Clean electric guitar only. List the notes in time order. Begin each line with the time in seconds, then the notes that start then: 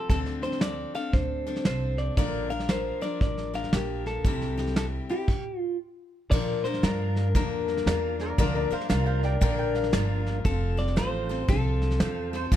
0.10 A4
0.43 C5
0.62 D5
0.95 F5
1.13 C5
1.67 C5
1.98 D5
2.18 D5
2.50 F5
2.69 C5
3.02 D5
3.22 D5
3.55 F5
3.75 G4
4.07 A4
4.77 A4
5.11 G4
5.59 F4
6.31 D5
6.64 C5
6.84 A#4
7.36 A#4
10.45 A4
10.79 D5
10.98 C5
11.50 A4